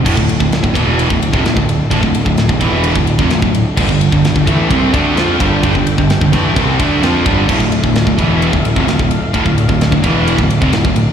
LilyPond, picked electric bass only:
\new Staff \with { instrumentName = "Picked electric bass" } { \clef bass \time 4/4 \key d \minor \tempo 4 = 129 d,,16 d,,8 d,,8 d,,16 e,,8. d,,8 f,,16 d,,16 d,,8 r16 | d,,16 d,,8 d,,8 d,,16 e,,8. d,,8 f,,16 d,,16 d,,8 r16 | g,,16 g,,8 g,,8 g,,16 a,,8 c,8 d,8 f,8 g,,8 | g,,16 g,,8 g,,8 g,,16 a,,8 c,8 d,8 f,8 g,,8 |
d,,16 d,,8 d,,8 d,,16 e,,8. d,,8 f,,16 d,,16 d,,8 r16 | d,,16 d,,8 d,,8 d,,16 e,,8. d,,8 f,,16 d,,16 d,,8 r16 | }